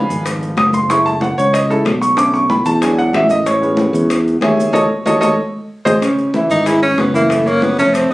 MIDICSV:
0, 0, Header, 1, 5, 480
1, 0, Start_track
1, 0, Key_signature, 4, "minor"
1, 0, Tempo, 320513
1, 1345, Time_signature, 4, 2, 24, 8
1, 12184, End_track
2, 0, Start_track
2, 0, Title_t, "Grand piano"
2, 0, Program_c, 0, 0
2, 0, Note_on_c, 0, 53, 58
2, 0, Note_on_c, 0, 59, 53
2, 0, Note_on_c, 0, 63, 65
2, 0, Note_on_c, 0, 71, 79
2, 0, Note_on_c, 0, 77, 78
2, 0, Note_on_c, 0, 80, 85
2, 0, Note_on_c, 0, 83, 100
2, 332, Note_off_c, 0, 83, 0
2, 337, Note_off_c, 0, 71, 0
2, 338, Note_off_c, 0, 77, 0
2, 338, Note_off_c, 0, 80, 0
2, 863, Note_on_c, 0, 87, 101
2, 1097, Note_off_c, 0, 87, 0
2, 1108, Note_on_c, 0, 84, 91
2, 1280, Note_off_c, 0, 53, 0
2, 1286, Note_off_c, 0, 59, 0
2, 1289, Note_off_c, 0, 63, 0
2, 1333, Note_on_c, 0, 56, 58
2, 1339, Note_off_c, 0, 84, 0
2, 1340, Note_on_c, 0, 57, 53
2, 1346, Note_on_c, 0, 85, 101
2, 1354, Note_on_c, 0, 64, 63
2, 1577, Note_off_c, 0, 85, 0
2, 1584, Note_on_c, 0, 81, 97
2, 1657, Note_off_c, 0, 56, 0
2, 1661, Note_off_c, 0, 57, 0
2, 1668, Note_off_c, 0, 64, 0
2, 1816, Note_off_c, 0, 81, 0
2, 1826, Note_on_c, 0, 78, 82
2, 2058, Note_off_c, 0, 78, 0
2, 2065, Note_on_c, 0, 73, 105
2, 2296, Note_on_c, 0, 75, 87
2, 2297, Note_off_c, 0, 73, 0
2, 2532, Note_off_c, 0, 75, 0
2, 2539, Note_on_c, 0, 56, 51
2, 2550, Note_on_c, 0, 57, 46
2, 2552, Note_on_c, 0, 69, 97
2, 2554, Note_on_c, 0, 64, 54
2, 2693, Note_off_c, 0, 69, 0
2, 2757, Note_off_c, 0, 56, 0
2, 2762, Note_off_c, 0, 57, 0
2, 2765, Note_off_c, 0, 64, 0
2, 3018, Note_on_c, 0, 85, 99
2, 3241, Note_on_c, 0, 50, 63
2, 3251, Note_on_c, 0, 57, 53
2, 3253, Note_off_c, 0, 85, 0
2, 3261, Note_on_c, 0, 86, 113
2, 3262, Note_on_c, 0, 61, 64
2, 3494, Note_off_c, 0, 86, 0
2, 3500, Note_on_c, 0, 85, 104
2, 3570, Note_off_c, 0, 50, 0
2, 3575, Note_off_c, 0, 57, 0
2, 3581, Note_off_c, 0, 61, 0
2, 3734, Note_off_c, 0, 85, 0
2, 3742, Note_on_c, 0, 83, 90
2, 3974, Note_off_c, 0, 83, 0
2, 3981, Note_on_c, 0, 81, 102
2, 4214, Note_off_c, 0, 81, 0
2, 4229, Note_on_c, 0, 56, 51
2, 4231, Note_on_c, 0, 54, 56
2, 4243, Note_on_c, 0, 62, 64
2, 4243, Note_on_c, 0, 80, 85
2, 4466, Note_off_c, 0, 80, 0
2, 4469, Note_on_c, 0, 78, 96
2, 4698, Note_off_c, 0, 78, 0
2, 4718, Note_on_c, 0, 76, 93
2, 4909, Note_off_c, 0, 56, 0
2, 4910, Note_off_c, 0, 54, 0
2, 4917, Note_off_c, 0, 62, 0
2, 4943, Note_off_c, 0, 76, 0
2, 4951, Note_on_c, 0, 75, 89
2, 5179, Note_off_c, 0, 75, 0
2, 5184, Note_on_c, 0, 73, 90
2, 5408, Note_on_c, 0, 56, 58
2, 5412, Note_on_c, 0, 59, 56
2, 5424, Note_on_c, 0, 61, 65
2, 6082, Note_off_c, 0, 73, 0
2, 6098, Note_off_c, 0, 56, 0
2, 6100, Note_off_c, 0, 59, 0
2, 6107, Note_off_c, 0, 61, 0
2, 6624, Note_on_c, 0, 73, 69
2, 6624, Note_on_c, 0, 76, 69
2, 6625, Note_on_c, 0, 68, 70
2, 6626, Note_on_c, 0, 80, 83
2, 7069, Note_off_c, 0, 68, 0
2, 7069, Note_off_c, 0, 73, 0
2, 7069, Note_off_c, 0, 76, 0
2, 7070, Note_off_c, 0, 80, 0
2, 7087, Note_on_c, 0, 69, 107
2, 7092, Note_on_c, 0, 73, 105
2, 7093, Note_on_c, 0, 75, 100
2, 7246, Note_off_c, 0, 69, 0
2, 7249, Note_off_c, 0, 73, 0
2, 7250, Note_off_c, 0, 75, 0
2, 7576, Note_on_c, 0, 73, 93
2, 7578, Note_on_c, 0, 75, 96
2, 7582, Note_on_c, 0, 69, 95
2, 7731, Note_off_c, 0, 73, 0
2, 7733, Note_off_c, 0, 75, 0
2, 7735, Note_off_c, 0, 69, 0
2, 7798, Note_on_c, 0, 75, 111
2, 7802, Note_on_c, 0, 69, 106
2, 7804, Note_on_c, 0, 73, 108
2, 7961, Note_off_c, 0, 75, 0
2, 7963, Note_off_c, 0, 69, 0
2, 7964, Note_off_c, 0, 73, 0
2, 8763, Note_on_c, 0, 72, 103
2, 8765, Note_on_c, 0, 68, 93
2, 8767, Note_on_c, 0, 75, 96
2, 8924, Note_off_c, 0, 72, 0
2, 8925, Note_off_c, 0, 68, 0
2, 8926, Note_off_c, 0, 75, 0
2, 9009, Note_on_c, 0, 49, 85
2, 9013, Note_on_c, 0, 61, 81
2, 9024, Note_on_c, 0, 73, 80
2, 9408, Note_off_c, 0, 49, 0
2, 9410, Note_off_c, 0, 61, 0
2, 9416, Note_off_c, 0, 73, 0
2, 9508, Note_on_c, 0, 64, 70
2, 9509, Note_on_c, 0, 76, 70
2, 9510, Note_on_c, 0, 52, 69
2, 9899, Note_off_c, 0, 64, 0
2, 9900, Note_off_c, 0, 52, 0
2, 9900, Note_off_c, 0, 76, 0
2, 9979, Note_on_c, 0, 56, 67
2, 9986, Note_on_c, 0, 68, 70
2, 9989, Note_on_c, 0, 80, 71
2, 10177, Note_off_c, 0, 56, 0
2, 10181, Note_off_c, 0, 68, 0
2, 10183, Note_off_c, 0, 80, 0
2, 10224, Note_on_c, 0, 61, 73
2, 10229, Note_on_c, 0, 73, 76
2, 10235, Note_on_c, 0, 85, 76
2, 10617, Note_off_c, 0, 61, 0
2, 10620, Note_off_c, 0, 73, 0
2, 10623, Note_off_c, 0, 85, 0
2, 10689, Note_on_c, 0, 52, 75
2, 10696, Note_on_c, 0, 64, 75
2, 10702, Note_on_c, 0, 76, 77
2, 11088, Note_off_c, 0, 52, 0
2, 11092, Note_off_c, 0, 64, 0
2, 11096, Note_off_c, 0, 76, 0
2, 11170, Note_on_c, 0, 49, 86
2, 11171, Note_on_c, 0, 61, 89
2, 11177, Note_on_c, 0, 73, 89
2, 11569, Note_off_c, 0, 49, 0
2, 11570, Note_off_c, 0, 61, 0
2, 11573, Note_off_c, 0, 73, 0
2, 11661, Note_on_c, 0, 57, 83
2, 11666, Note_on_c, 0, 81, 87
2, 11669, Note_on_c, 0, 69, 78
2, 12056, Note_off_c, 0, 57, 0
2, 12059, Note_off_c, 0, 81, 0
2, 12060, Note_off_c, 0, 69, 0
2, 12135, Note_on_c, 0, 63, 78
2, 12135, Note_on_c, 0, 75, 72
2, 12184, Note_off_c, 0, 63, 0
2, 12184, Note_off_c, 0, 75, 0
2, 12184, End_track
3, 0, Start_track
3, 0, Title_t, "Tenor saxophone"
3, 0, Program_c, 1, 66
3, 9745, Note_on_c, 1, 63, 89
3, 9984, Note_on_c, 1, 64, 90
3, 10006, Note_off_c, 1, 63, 0
3, 10215, Note_off_c, 1, 64, 0
3, 10224, Note_on_c, 1, 61, 100
3, 10489, Note_on_c, 1, 59, 84
3, 10511, Note_off_c, 1, 61, 0
3, 10698, Note_off_c, 1, 59, 0
3, 10707, Note_on_c, 1, 58, 88
3, 10958, Note_on_c, 1, 57, 81
3, 10980, Note_off_c, 1, 58, 0
3, 11190, Note_on_c, 1, 58, 97
3, 11212, Note_off_c, 1, 57, 0
3, 11428, Note_on_c, 1, 59, 83
3, 11451, Note_off_c, 1, 58, 0
3, 11657, Note_off_c, 1, 59, 0
3, 11666, Note_on_c, 1, 61, 109
3, 11891, Note_on_c, 1, 60, 91
3, 11913, Note_off_c, 1, 61, 0
3, 12137, Note_off_c, 1, 60, 0
3, 12184, End_track
4, 0, Start_track
4, 0, Title_t, "Fingered electric bass"
4, 0, Program_c, 2, 33
4, 153, Note_on_c, 2, 32, 92
4, 818, Note_off_c, 2, 32, 0
4, 865, Note_on_c, 2, 30, 92
4, 1980, Note_off_c, 2, 30, 0
4, 2072, Note_on_c, 2, 37, 93
4, 2737, Note_off_c, 2, 37, 0
4, 2789, Note_on_c, 2, 35, 92
4, 3901, Note_off_c, 2, 35, 0
4, 3978, Note_on_c, 2, 40, 96
4, 4649, Note_off_c, 2, 40, 0
4, 4693, Note_on_c, 2, 33, 93
4, 5813, Note_off_c, 2, 33, 0
4, 5889, Note_on_c, 2, 40, 97
4, 6564, Note_off_c, 2, 40, 0
4, 6605, Note_on_c, 2, 39, 93
4, 7059, Note_off_c, 2, 39, 0
4, 7080, Note_on_c, 2, 39, 100
4, 7268, Note_off_c, 2, 39, 0
4, 7572, Note_on_c, 2, 39, 102
4, 7755, Note_off_c, 2, 39, 0
4, 7814, Note_on_c, 2, 39, 96
4, 7996, Note_off_c, 2, 39, 0
4, 8779, Note_on_c, 2, 32, 94
4, 8959, Note_off_c, 2, 32, 0
4, 9729, Note_on_c, 2, 32, 92
4, 10405, Note_off_c, 2, 32, 0
4, 10460, Note_on_c, 2, 30, 86
4, 11578, Note_off_c, 2, 30, 0
4, 11656, Note_on_c, 2, 29, 98
4, 12106, Note_off_c, 2, 29, 0
4, 12126, Note_on_c, 2, 29, 72
4, 12184, Note_off_c, 2, 29, 0
4, 12184, End_track
5, 0, Start_track
5, 0, Title_t, "Drums"
5, 139, Note_on_c, 9, 63, 36
5, 142, Note_on_c, 9, 60, 35
5, 158, Note_on_c, 9, 70, 70
5, 288, Note_off_c, 9, 63, 0
5, 291, Note_off_c, 9, 60, 0
5, 307, Note_off_c, 9, 70, 0
5, 376, Note_on_c, 9, 63, 38
5, 384, Note_on_c, 9, 60, 68
5, 392, Note_on_c, 9, 70, 90
5, 526, Note_off_c, 9, 63, 0
5, 534, Note_off_c, 9, 60, 0
5, 542, Note_off_c, 9, 70, 0
5, 617, Note_on_c, 9, 60, 35
5, 623, Note_on_c, 9, 63, 36
5, 639, Note_on_c, 9, 70, 29
5, 767, Note_off_c, 9, 60, 0
5, 772, Note_off_c, 9, 63, 0
5, 788, Note_off_c, 9, 70, 0
5, 852, Note_on_c, 9, 63, 89
5, 862, Note_on_c, 9, 60, 73
5, 862, Note_on_c, 9, 61, 86
5, 880, Note_on_c, 9, 70, 28
5, 1002, Note_off_c, 9, 63, 0
5, 1011, Note_off_c, 9, 60, 0
5, 1011, Note_off_c, 9, 61, 0
5, 1030, Note_off_c, 9, 70, 0
5, 1094, Note_on_c, 9, 63, 85
5, 1098, Note_on_c, 9, 60, 33
5, 1104, Note_on_c, 9, 70, 75
5, 1244, Note_off_c, 9, 63, 0
5, 1248, Note_off_c, 9, 60, 0
5, 1254, Note_off_c, 9, 70, 0
5, 1336, Note_on_c, 9, 63, 34
5, 1347, Note_on_c, 9, 60, 78
5, 1356, Note_on_c, 9, 70, 96
5, 1486, Note_off_c, 9, 63, 0
5, 1496, Note_off_c, 9, 60, 0
5, 1506, Note_off_c, 9, 70, 0
5, 1575, Note_on_c, 9, 63, 37
5, 1603, Note_on_c, 9, 70, 31
5, 1724, Note_off_c, 9, 63, 0
5, 1753, Note_off_c, 9, 70, 0
5, 1813, Note_on_c, 9, 63, 95
5, 1825, Note_on_c, 9, 60, 60
5, 1843, Note_on_c, 9, 70, 28
5, 1962, Note_off_c, 9, 63, 0
5, 1974, Note_off_c, 9, 60, 0
5, 1993, Note_off_c, 9, 70, 0
5, 2081, Note_on_c, 9, 70, 70
5, 2231, Note_off_c, 9, 70, 0
5, 2301, Note_on_c, 9, 63, 37
5, 2304, Note_on_c, 9, 60, 74
5, 2319, Note_on_c, 9, 70, 95
5, 2450, Note_off_c, 9, 63, 0
5, 2454, Note_off_c, 9, 60, 0
5, 2468, Note_off_c, 9, 70, 0
5, 2538, Note_on_c, 9, 63, 35
5, 2560, Note_on_c, 9, 70, 28
5, 2688, Note_off_c, 9, 63, 0
5, 2710, Note_off_c, 9, 70, 0
5, 2774, Note_on_c, 9, 63, 89
5, 2784, Note_on_c, 9, 60, 72
5, 2784, Note_on_c, 9, 61, 87
5, 2797, Note_on_c, 9, 70, 29
5, 2923, Note_off_c, 9, 63, 0
5, 2934, Note_off_c, 9, 60, 0
5, 2934, Note_off_c, 9, 61, 0
5, 2947, Note_off_c, 9, 70, 0
5, 3032, Note_on_c, 9, 70, 74
5, 3182, Note_off_c, 9, 70, 0
5, 3248, Note_on_c, 9, 60, 73
5, 3260, Note_on_c, 9, 63, 35
5, 3272, Note_on_c, 9, 70, 96
5, 3398, Note_off_c, 9, 60, 0
5, 3410, Note_off_c, 9, 63, 0
5, 3422, Note_off_c, 9, 70, 0
5, 3499, Note_on_c, 9, 63, 35
5, 3517, Note_on_c, 9, 70, 31
5, 3649, Note_off_c, 9, 63, 0
5, 3667, Note_off_c, 9, 70, 0
5, 3739, Note_on_c, 9, 60, 59
5, 3741, Note_on_c, 9, 63, 100
5, 3748, Note_on_c, 9, 70, 30
5, 3889, Note_off_c, 9, 60, 0
5, 3890, Note_off_c, 9, 63, 0
5, 3898, Note_off_c, 9, 70, 0
5, 3975, Note_on_c, 9, 60, 34
5, 3978, Note_on_c, 9, 70, 75
5, 4125, Note_off_c, 9, 60, 0
5, 4128, Note_off_c, 9, 70, 0
5, 4215, Note_on_c, 9, 63, 39
5, 4221, Note_on_c, 9, 60, 76
5, 4228, Note_on_c, 9, 70, 94
5, 4364, Note_off_c, 9, 63, 0
5, 4370, Note_off_c, 9, 60, 0
5, 4378, Note_off_c, 9, 70, 0
5, 4455, Note_on_c, 9, 63, 37
5, 4473, Note_on_c, 9, 70, 30
5, 4477, Note_on_c, 9, 60, 36
5, 4605, Note_off_c, 9, 63, 0
5, 4622, Note_off_c, 9, 70, 0
5, 4627, Note_off_c, 9, 60, 0
5, 4693, Note_on_c, 9, 63, 89
5, 4707, Note_on_c, 9, 70, 30
5, 4708, Note_on_c, 9, 60, 71
5, 4708, Note_on_c, 9, 61, 88
5, 4842, Note_off_c, 9, 63, 0
5, 4857, Note_off_c, 9, 70, 0
5, 4858, Note_off_c, 9, 60, 0
5, 4858, Note_off_c, 9, 61, 0
5, 4932, Note_on_c, 9, 63, 84
5, 4943, Note_on_c, 9, 70, 72
5, 4948, Note_on_c, 9, 60, 33
5, 5082, Note_off_c, 9, 63, 0
5, 5093, Note_off_c, 9, 70, 0
5, 5098, Note_off_c, 9, 60, 0
5, 5170, Note_on_c, 9, 63, 37
5, 5188, Note_on_c, 9, 60, 78
5, 5188, Note_on_c, 9, 70, 93
5, 5320, Note_off_c, 9, 63, 0
5, 5338, Note_off_c, 9, 60, 0
5, 5338, Note_off_c, 9, 70, 0
5, 5408, Note_on_c, 9, 63, 37
5, 5436, Note_on_c, 9, 70, 32
5, 5558, Note_off_c, 9, 63, 0
5, 5585, Note_off_c, 9, 70, 0
5, 5645, Note_on_c, 9, 63, 98
5, 5666, Note_on_c, 9, 60, 57
5, 5669, Note_on_c, 9, 70, 30
5, 5795, Note_off_c, 9, 63, 0
5, 5815, Note_off_c, 9, 60, 0
5, 5818, Note_off_c, 9, 70, 0
5, 5888, Note_on_c, 9, 63, 35
5, 5911, Note_on_c, 9, 70, 73
5, 6038, Note_off_c, 9, 63, 0
5, 6060, Note_off_c, 9, 70, 0
5, 6125, Note_on_c, 9, 63, 39
5, 6142, Note_on_c, 9, 60, 75
5, 6152, Note_on_c, 9, 70, 92
5, 6275, Note_off_c, 9, 63, 0
5, 6292, Note_off_c, 9, 60, 0
5, 6301, Note_off_c, 9, 70, 0
5, 6372, Note_on_c, 9, 63, 36
5, 6404, Note_on_c, 9, 70, 29
5, 6522, Note_off_c, 9, 63, 0
5, 6554, Note_off_c, 9, 70, 0
5, 6605, Note_on_c, 9, 63, 91
5, 6622, Note_on_c, 9, 60, 76
5, 6622, Note_on_c, 9, 61, 89
5, 6648, Note_on_c, 9, 70, 29
5, 6755, Note_off_c, 9, 63, 0
5, 6772, Note_off_c, 9, 60, 0
5, 6772, Note_off_c, 9, 61, 0
5, 6798, Note_off_c, 9, 70, 0
5, 6848, Note_on_c, 9, 63, 75
5, 6889, Note_on_c, 9, 70, 74
5, 6998, Note_off_c, 9, 63, 0
5, 7039, Note_off_c, 9, 70, 0
5, 7084, Note_on_c, 9, 63, 101
5, 7092, Note_on_c, 9, 61, 107
5, 7119, Note_on_c, 9, 70, 98
5, 7234, Note_off_c, 9, 63, 0
5, 7241, Note_off_c, 9, 61, 0
5, 7268, Note_off_c, 9, 70, 0
5, 7573, Note_on_c, 9, 63, 98
5, 7581, Note_on_c, 9, 61, 97
5, 7591, Note_on_c, 9, 70, 99
5, 7723, Note_off_c, 9, 63, 0
5, 7731, Note_off_c, 9, 61, 0
5, 7740, Note_off_c, 9, 70, 0
5, 7815, Note_on_c, 9, 63, 111
5, 7821, Note_on_c, 9, 61, 95
5, 7826, Note_on_c, 9, 70, 102
5, 7965, Note_off_c, 9, 63, 0
5, 7971, Note_off_c, 9, 61, 0
5, 7976, Note_off_c, 9, 70, 0
5, 8775, Note_on_c, 9, 63, 102
5, 8785, Note_on_c, 9, 61, 100
5, 8790, Note_on_c, 9, 70, 102
5, 8925, Note_off_c, 9, 63, 0
5, 8935, Note_off_c, 9, 61, 0
5, 8939, Note_off_c, 9, 70, 0
5, 9014, Note_on_c, 9, 63, 35
5, 9021, Note_on_c, 9, 60, 72
5, 9024, Note_on_c, 9, 70, 91
5, 9164, Note_off_c, 9, 63, 0
5, 9171, Note_off_c, 9, 60, 0
5, 9174, Note_off_c, 9, 70, 0
5, 9246, Note_on_c, 9, 63, 36
5, 9261, Note_on_c, 9, 70, 29
5, 9396, Note_off_c, 9, 63, 0
5, 9410, Note_off_c, 9, 70, 0
5, 9493, Note_on_c, 9, 63, 89
5, 9498, Note_on_c, 9, 60, 58
5, 9503, Note_on_c, 9, 70, 29
5, 9642, Note_off_c, 9, 63, 0
5, 9648, Note_off_c, 9, 60, 0
5, 9653, Note_off_c, 9, 70, 0
5, 9733, Note_on_c, 9, 63, 35
5, 9743, Note_on_c, 9, 70, 71
5, 9883, Note_off_c, 9, 63, 0
5, 9893, Note_off_c, 9, 70, 0
5, 9973, Note_on_c, 9, 63, 36
5, 9977, Note_on_c, 9, 60, 74
5, 9985, Note_on_c, 9, 70, 92
5, 10123, Note_off_c, 9, 63, 0
5, 10127, Note_off_c, 9, 60, 0
5, 10135, Note_off_c, 9, 70, 0
5, 10209, Note_on_c, 9, 63, 35
5, 10227, Note_on_c, 9, 70, 27
5, 10359, Note_off_c, 9, 63, 0
5, 10377, Note_off_c, 9, 70, 0
5, 10448, Note_on_c, 9, 63, 87
5, 10452, Note_on_c, 9, 60, 72
5, 10452, Note_on_c, 9, 61, 85
5, 10470, Note_on_c, 9, 70, 29
5, 10598, Note_off_c, 9, 63, 0
5, 10602, Note_off_c, 9, 60, 0
5, 10602, Note_off_c, 9, 61, 0
5, 10620, Note_off_c, 9, 70, 0
5, 10695, Note_on_c, 9, 63, 74
5, 10715, Note_on_c, 9, 70, 68
5, 10844, Note_off_c, 9, 63, 0
5, 10864, Note_off_c, 9, 70, 0
5, 10928, Note_on_c, 9, 63, 34
5, 10932, Note_on_c, 9, 60, 71
5, 10956, Note_on_c, 9, 70, 86
5, 11078, Note_off_c, 9, 63, 0
5, 11081, Note_off_c, 9, 60, 0
5, 11105, Note_off_c, 9, 70, 0
5, 11181, Note_on_c, 9, 63, 36
5, 11190, Note_on_c, 9, 70, 32
5, 11330, Note_off_c, 9, 63, 0
5, 11340, Note_off_c, 9, 70, 0
5, 11414, Note_on_c, 9, 63, 96
5, 11426, Note_on_c, 9, 60, 58
5, 11437, Note_on_c, 9, 70, 31
5, 11564, Note_off_c, 9, 63, 0
5, 11576, Note_off_c, 9, 60, 0
5, 11587, Note_off_c, 9, 70, 0
5, 11648, Note_on_c, 9, 63, 37
5, 11668, Note_on_c, 9, 70, 70
5, 11675, Note_on_c, 9, 60, 34
5, 11798, Note_off_c, 9, 63, 0
5, 11818, Note_off_c, 9, 70, 0
5, 11825, Note_off_c, 9, 60, 0
5, 11894, Note_on_c, 9, 63, 36
5, 11900, Note_on_c, 9, 70, 90
5, 11905, Note_on_c, 9, 60, 75
5, 12044, Note_off_c, 9, 63, 0
5, 12049, Note_off_c, 9, 70, 0
5, 12055, Note_off_c, 9, 60, 0
5, 12184, End_track
0, 0, End_of_file